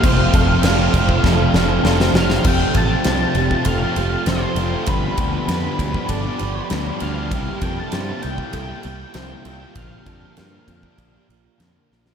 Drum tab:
CC |x-x-x-x---------|x---------------|----------------|----------------|
RD |----------------|--x-x-x-x-x-x-x-|x-x-x-x-x-x-x-x-|x-x-x-x-x-x-x-x-|
SD |----o---o-o-oooo|----o-------o---|----o-------o---|----o-------o---|
BD |o-o---ooo-------|o-o----oo-------|o-o---ooo-------|o-o----oo-------|

CC |----------------|
RD |x-x-x-x-x-x-x---|
SD |----o-------o-oo|
BD |o-o---ooo-------|